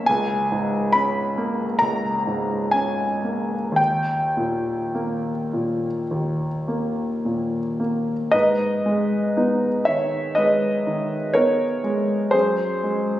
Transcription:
Already playing: B1 F#2 A#3 C#4 C#5 E5
0.06 C#2 G#5
0.52 G#2
0.93 C#4 B5
1.38 A#3
1.79 C#2 A#5
2.27 G#2
2.71 C#4 G#5
3.24 A#3
3.72 D#2
3.76 G5
4.37 A#2
4.95 A#3
5.53 A#2
6.11 D#2
6.68 A#3
7.25 A#2
7.80 A#3
8.31 G#2 B4 D#5
8.86 G#3
9.37 B3 D#4
9.85 D#3 C#5 E5
10.35 G#3 B4 D#5
10.87 D#3
11.34 B3 D#4 A#4 C#5
11.84 G#3
12.31 F#2 G#4 C5
12.83 G#3

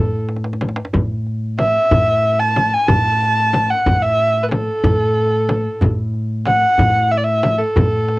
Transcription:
Already playing: A2 A4
0.29 tombak tek
0.36 tombak ka
0.44 tombak tek
0.53 tombak ka
0.61 tombak tek, frame drum
0.69 tombak ka
0.76 tombak tek
0.85 tombak ka
0.93 A2, tombak dum, frame drum
1.26 tombak ka
1.59 E5, tombak tek, frame drum
1.91 A2, frame drum, tombak dum
2.24 tombak ka
2.39 A5
2.56 tombak tek, frame drum
2.73 G#5
2.88 A2 A5, frame drum, tombak dum
3.22 tombak ka
3.53 tombak tek, frame drum
3.70 F#5
3.86 A2, frame drum, tombak dum
4.02 E5
4.19 tombak ka
4.43 B4
4.49 A4, tombak tek, frame drum
4.84 A2, frame drum, tombak dum
5.17 tombak ka
5.49 tombak tek, frame drum
5.81 A2, tombak dum, frame drum
6.14 tombak ka
6.46 F#5, tombak tek, frame drum
6.78 A2, tombak dum, frame drum
7.11 E5, tombak ka
7.18 D5
7.25 E5
7.43 tombak tek, frame drum
7.59 A4
7.76 A2, tombak dum, frame drum
8.09 tombak tek

